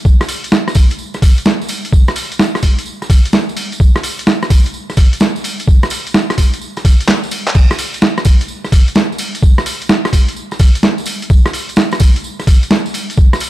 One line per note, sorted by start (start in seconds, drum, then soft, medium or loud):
0.05 kick loud
0.05 tambourine medium
0.21 cross-stick medium
0.21 tambourine soft
0.29 open hi-hat loud
0.29 tambourine medium
0.44 closed hi-hat medium
0.44 tambourine soft
0.52 snare loud
0.52 tambourine medium
0.68 cross-stick medium
0.68 tambourine soft
0.75 kick loud
0.75 open hi-hat loud
0.75 tambourine medium
0.90 closed hi-hat medium
0.90 tambourine soft
0.98 tambourine medium
1.14 cross-stick soft
1.14 tambourine soft
1.22 kick loud
1.22 open hi-hat loud
1.22 tambourine medium
1.38 closed hi-hat medium
1.38 tambourine soft
1.45 snare loud
1.45 tambourine medium
1.61 tambourine soft
1.69 open hi-hat loud
1.69 tambourine medium
1.85 closed hi-hat medium
1.85 tambourine soft
1.93 kick loud
1.93 tambourine medium
2.08 cross-stick medium
2.08 tambourine soft
2.16 open hi-hat loud
2.16 tambourine medium
2.32 closed hi-hat medium
2.32 tambourine soft
2.39 snare loud
2.39 tambourine medium
2.55 cross-stick medium
2.55 tambourine soft
2.62 kick medium
2.62 open hi-hat loud
2.62 tambourine medium
2.79 closed hi-hat medium
2.79 tambourine soft
2.86 tambourine soft
3.02 cross-stick soft
3.02 tambourine soft
3.10 kick loud
3.10 open hi-hat loud
3.10 tambourine medium
3.25 closed hi-hat medium
3.25 tambourine soft
3.33 snare loud
3.33 tambourine soft
3.49 tambourine soft
3.57 open hi-hat loud
3.57 tambourine medium
3.72 closed hi-hat medium
3.72 tambourine soft
3.80 kick loud
3.80 tambourine soft
3.96 cross-stick medium
3.96 tambourine soft
4.03 open hi-hat loud
4.03 tambourine medium
4.19 closed hi-hat medium
4.19 tambourine soft
4.27 snare loud
4.27 tambourine soft
4.42 cross-stick medium
4.42 tambourine soft
4.50 kick loud
4.50 open hi-hat loud
4.50 tambourine medium
4.66 closed hi-hat medium
4.66 tambourine soft
4.74 tambourine soft
4.90 cross-stick soft
4.90 tambourine soft
4.97 kick loud
4.97 open hi-hat loud
4.97 tambourine medium
5.13 closed hi-hat medium
5.13 tambourine soft
5.20 snare loud
5.20 tambourine medium
5.36 tambourine soft
5.44 open hi-hat loud
5.44 tambourine medium
5.59 closed hi-hat medium
5.59 tambourine soft
5.68 kick loud
5.68 tambourine soft
5.83 cross-stick medium
5.83 tambourine soft
5.90 open hi-hat loud
5.90 tambourine loud
6.07 closed hi-hat medium
6.07 tambourine soft
6.14 snare loud
6.14 tambourine soft
6.30 cross-stick medium
6.30 closed hi-hat soft
6.30 tambourine soft
6.38 kick medium
6.38 open hi-hat loud
6.38 tambourine medium
6.53 closed hi-hat medium
6.53 tambourine soft
6.61 tambourine soft
6.77 cross-stick soft
6.77 closed hi-hat soft
6.77 tambourine soft
6.85 kick loud
6.85 open hi-hat loud
6.85 tambourine medium
7.01 closed hi-hat medium
7.01 tambourine soft
7.08 snare loud
7.08 clap loud
7.08 tambourine medium
7.23 tambourine soft
7.31 open hi-hat loud
7.31 tambourine medium
7.47 clap medium
7.47 closed hi-hat medium
7.47 tambourine soft
7.55 kick loud
7.55 tambourine medium
7.55 crash medium
7.71 cross-stick medium
7.71 tambourine soft
7.79 open hi-hat loud
7.79 tambourine medium
7.94 closed hi-hat medium
7.94 tambourine soft
8.02 snare loud
8.02 tambourine soft
8.17 cross-stick medium
8.17 tambourine soft
8.25 kick loud
8.25 open hi-hat loud
8.25 tambourine loud
8.41 closed hi-hat medium
8.41 tambourine soft
8.48 tambourine medium
8.65 cross-stick soft
8.65 tambourine soft
8.72 kick loud
8.72 open hi-hat loud
8.72 tambourine medium
8.88 closed hi-hat medium
8.88 tambourine soft
8.95 snare loud
8.95 tambourine soft
9.12 tambourine soft
9.18 open hi-hat loud
9.18 tambourine medium
9.35 closed hi-hat medium
9.35 tambourine soft
9.43 kick loud
9.43 tambourine medium
9.58 cross-stick medium
9.58 tambourine soft
9.66 open hi-hat loud
9.66 tambourine medium
9.82 closed hi-hat medium
9.82 tambourine soft
9.89 snare loud
9.89 tambourine medium
10.05 cross-stick medium
10.05 tambourine soft
10.13 kick medium
10.13 open hi-hat loud
10.13 tambourine loud
10.29 closed hi-hat medium
10.29 tambourine soft
10.37 tambourine medium
10.51 cross-stick soft
10.51 tambourine soft
10.59 kick loud
10.59 open hi-hat loud
10.59 tambourine medium
10.75 closed hi-hat medium
10.75 tambourine soft
10.83 snare loud
10.83 tambourine medium
10.98 tambourine soft
11.06 open hi-hat loud
11.06 tambourine medium
11.22 closed hi-hat medium
11.22 tambourine soft
11.30 kick loud
11.30 tambourine medium
11.46 cross-stick medium
11.46 tambourine soft
11.53 open hi-hat loud
11.53 tambourine medium
11.69 closed hi-hat medium
11.69 tambourine soft
11.76 snare loud
11.76 tambourine medium
11.91 cross-stick medium
11.91 tambourine soft
12.00 kick loud
12.00 open hi-hat loud
12.00 tambourine loud
12.16 closed hi-hat medium
12.16 tambourine soft
12.24 tambourine medium
12.40 cross-stick soft
12.40 tambourine soft
12.47 kick loud
12.47 open hi-hat loud
12.47 tambourine loud
12.63 closed hi-hat medium
12.63 tambourine soft
12.70 snare loud
12.70 tambourine medium
12.86 tambourine soft
12.94 open hi-hat loud
12.94 tambourine medium
13.10 closed hi-hat medium
13.10 tambourine soft
13.17 kick loud
13.17 tambourine medium
13.33 cross-stick medium
13.33 tambourine soft
13.40 open hi-hat loud
13.40 tambourine medium